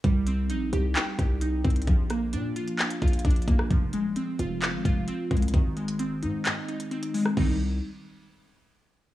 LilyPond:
<<
  \new Staff \with { instrumentName = "Synth keys" } { \time 4/4 \key c \minor \tempo 4 = 131 g8 c'8 ees'8 g'8 g''8 g'8 ees'8 c'8 | f8 bes8 d'8 f'8 f''8 f'8 d'8 bes8 | f8 aes8 c'8 f'8 f''8 f'8 c'8 aes8 | ees8 aes8 c'8 ees'8 ees''8 ees'8 c'8 aes8 |
<ees g c' ees'>8 r2. r8 | }
  \new Staff \with { instrumentName = "808-style bass" } { \clef bass \time 4/4 \key c \minor c,4 bes,,8 c,8 r8 c,4 c,8 | bes,,4 bes,8 r4 bes,,8 bes,,8 bes,,8 | f,,8 ees,,8 r8 f,,8. aes,,16 f,,8 r8 c,8 | aes,,4. aes,8 r2 |
c,4 r2. | }
  \new DrumStaff \with { instrumentName = "Drums" } \drummode { \time 4/4 <hh bd>8 hh8 hh8 hh8 <hc hh>8 <hh bd>8 hh8 <hh bd>32 hh32 hh32 hh32 | <hh bd>8 <hh ss>8 hh8 hh16 hh16 <hc hh>16 hh16 <hh bd>32 hh32 hh32 hh32 <hh bd>32 hh32 hh32 hh32 <hh bd>16 ss16 | <hh bd>8 hh8 hh8 hh8 <hc hh>8 <hh bd>8 hh8 <hh bd>32 hh32 hh32 hh32 | <hh bd>8 hh16 hh16 hh8 hh8 <hc hh>8 hh16 hh16 hh16 hh16 hho16 ss16 |
<cymc bd>4 r4 r4 r4 | }
>>